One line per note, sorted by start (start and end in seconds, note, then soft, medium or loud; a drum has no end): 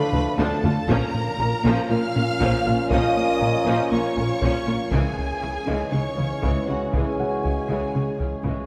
0.00 0.71 A2 medium
0.00 0.88 F3 medium
0.00 0.71 A3 medium
0.00 0.71 D4 loud
0.00 0.89 D4 medium
0.00 0.71 A4 medium
0.00 0.89 A4 medium
0.00 0.37 B4 loud
0.00 0.88 F5 loud
0.00 0.91 G5 medium
0.00 0.38 B5 loud
0.13 0.28 D2 medium
0.13 0.21 D2 medium
0.13 0.28 F3 medium
0.13 0.22 D4 medium
0.13 0.22 A4 medium
0.13 taiko mid medium
0.38 0.46 D2 medium
0.38 0.54 D2 loud
0.38 0.47 D2 medium
0.38 0.53 D3 loud
0.38 0.62 F3 medium
0.38 0.62 D4 medium
0.38 0.89 A4 medium
0.38 0.88 A5 loud
0.38 taiko high loud
0.64 0.72 D2 medium
0.64 0.79 D3 medium
0.64 0.79 A3 medium
0.64 0.72 A3 medium
0.64 0.72 F4 medium
0.64 taiko low medium
0.88 0.97 A#1 medium
0.88 4.87 A#2 medium
0.88 0.96 A#2 medium
0.88 1.04 A#2 loud
0.88 4.88 F3 medium
0.88 1.12 F3 medium
0.88 1.04 A#3 medium
0.88 4.87 C#4 medium
0.88 4.88 C#4 medium
0.88 4.92 C#4 medium
0.88 1.12 C#4 medium
0.88 4.88 F4 medium
0.88 1.89 A#4 loud
0.88 4.92 A#4 medium
0.88 4.88 F5 medium
0.88 1.90 A#5 loud
0.88 taiko loud
1.15 1.29 A#2 medium
1.38 1.48 A#1 medium
1.38 1.46 A#2 medium
1.38 1.55 A#2 medium
1.38 1.48 C#4 medium
1.38 1.55 A#4 medium
1.38 1.48 A#4 medium
1.38 2.87 A#5 medium
1.64 1.72 A#1 medium
1.64 1.72 A#2 medium
1.64 1.80 A#2 medium
1.64 1.88 F3 loud
1.64 1.80 A#3 medium
1.64 1.88 C#4 medium
1.90 1.98 A#1 medium
1.90 1.98 A#2 medium
1.90 1.98 A#3 medium
1.90 2.06 A#3 medium
1.90 1.98 F4 medium
1.90 2.05 F4 medium
1.90 2.90 F5 loud
1.90 2.91 F6 loud
2.15 2.23 A#1 medium
2.15 2.23 A#2 medium
2.15 2.31 A#2 medium
2.15 2.30 C#4 medium
2.15 2.24 C#4 medium
2.15 2.24 A#4 medium
2.40 2.49 A#1 loud
2.40 2.48 A#2 loud
2.40 2.56 A#2 medium
2.40 2.64 F3 loud
2.40 2.56 A#3 loud
2.40 2.64 C#4 medium
2.40 taiko medium
2.66 2.74 A#1 medium
2.66 2.74 A#2 medium
2.66 2.74 A#3 medium
2.66 2.82 A#3 medium
2.66 2.81 F4 medium
2.66 2.74 F4 medium
2.90 2.99 A#1 medium
2.90 2.99 A#2 medium
2.90 3.07 A#2 medium
2.90 3.14 F3 medium
2.90 3.05 A#3 medium
2.90 3.14 C#4 medium
2.90 3.90 D#5 loud
2.90 4.38 F5 medium
2.90 3.89 D#6 loud
2.90 taiko medium
3.17 3.32 A#2 medium
3.41 3.49 A#1 medium
3.41 3.49 A#2 medium
3.41 3.57 A#2 medium
3.41 3.50 C#4 medium
3.41 3.56 A#4 medium
3.41 3.50 A#4 medium
3.66 3.74 A#1 medium
3.66 3.74 A#2 medium
3.66 3.82 A#2 medium
3.66 3.90 F3 loud
3.66 3.81 A#3 medium
3.66 3.90 C#4 medium
3.91 4.00 A#1 medium
3.91 3.99 A#2 medium
3.91 4.07 A#3 medium
3.91 4.01 A#3 medium
3.91 4.06 F4 medium
3.91 4.01 F4 medium
3.91 4.92 C#5 medium
3.91 4.90 C#6 loud
4.16 4.25 A#1 medium
4.16 4.24 A#2 medium
4.16 4.32 A#2 medium
4.16 4.32 C#4 medium
4.16 4.27 C#4 medium
4.16 4.27 A#4 medium
4.41 4.50 A#1 medium
4.41 4.49 A#2 medium
4.41 4.58 A#2 medium
4.41 4.66 F3 medium
4.41 4.57 A#3 loud
4.41 4.66 C#4 medium
4.41 taiko medium
4.67 4.76 A#1 medium
4.67 4.75 A#2 medium
4.67 4.83 A#3 medium
4.67 4.76 A#3 medium
4.67 4.82 F4 medium
4.67 4.76 F4 medium
4.91 5.00 C#2 medium
4.91 5.08 C#2 medium
4.91 5.00 C#3 medium
4.91 5.07 C#3 medium
4.91 8.66 C#3 medium
4.91 5.16 E3 medium
4.91 8.66 E3 medium
4.91 8.66 G#3 medium
4.91 5.16 G#3 medium
4.91 8.66 C#4 medium
4.91 5.91 G#4 medium
4.91 8.66 C#5 medium
4.91 5.92 G#5 loud
4.91 taiko medium
5.19 5.33 C#2 medium
5.42 5.51 C#2 soft
5.42 5.59 C#2 medium
5.42 5.50 C#3 medium
5.42 5.58 C#4 medium
5.42 5.51 C#4 medium
5.42 5.51 E4 medium
5.66 5.76 C#2 medium
5.66 5.84 C#2 medium
5.66 5.74 C#3 medium
5.66 5.82 C#3 medium
5.66 5.91 E3 medium
5.66 5.91 G#3 medium
5.66 7.15 D#4 soft
5.66 7.15 D#5 medium
5.92 6.01 C#2 medium
5.92 6.00 C#3 medium
5.92 6.09 C#3 medium
5.92 6.07 G#3 medium
5.92 6.01 G#3 medium
5.92 6.01 C#4 medium
5.92 6.69 C#5 medium
5.92 6.68 C#6 medium
6.17 6.26 C#2 medium
6.17 6.34 C#2 medium
6.17 6.25 C#3 soft
6.17 6.33 E3 medium
6.17 6.26 C#4 soft
6.17 6.27 E4 soft
6.42 6.51 C#2 medium
6.42 6.59 C#2 medium
6.42 6.50 C#3 medium
6.42 6.58 C#3 medium
6.42 6.67 E3 medium
6.42 6.67 G#3 medium
6.42 taiko medium
6.67 6.77 C#2 soft
6.67 6.75 C#3 soft
6.67 6.85 C#3 medium
6.67 6.83 G#3 medium
6.67 6.77 G#3 medium
6.67 6.77 C#4 medium
6.67 6.93 F#4 medium
6.67 6.93 F#5 medium
6.92 7.02 C#2 medium
6.92 7.09 C#2 medium
6.92 7.00 C#3 medium
6.92 7.08 C#3 medium
6.92 7.18 E3 medium
6.92 7.18 G#3 medium
6.92 8.66 G#4 medium
6.92 8.66 G#5 medium
6.92 taiko medium
7.19 7.35 C#2 medium
7.19 8.66 F#4 soft
7.19 8.66 F#5 medium
7.43 7.53 C#2 soft
7.43 7.60 C#2 medium
7.43 7.51 C#3 soft
7.43 7.59 C#4 medium
7.43 7.53 C#4 soft
7.43 7.53 E4 soft
7.68 7.78 C#2 medium
7.68 7.86 C#2 medium
7.68 7.76 C#3 medium
7.68 7.84 C#3 medium
7.68 7.93 E3 medium
7.68 7.93 G#3 medium
7.94 8.03 C#2 soft
7.94 8.02 C#3 soft
7.94 8.11 C#3 medium
7.94 8.10 G#3 medium
7.94 8.04 G#3 soft
7.94 8.03 C#4 soft
8.18 8.28 C#2 soft
8.18 8.35 C#2 medium
8.18 8.26 C#3 soft
8.18 8.35 E3 medium
8.18 8.29 C#4 soft
8.18 8.29 E4 soft
8.43 8.53 C#2 medium
8.43 8.60 C#2 medium
8.43 8.51 C#3 medium
8.43 8.59 C#3 medium
8.43 8.66 E3 medium
8.43 8.66 G#3 medium
8.43 taiko medium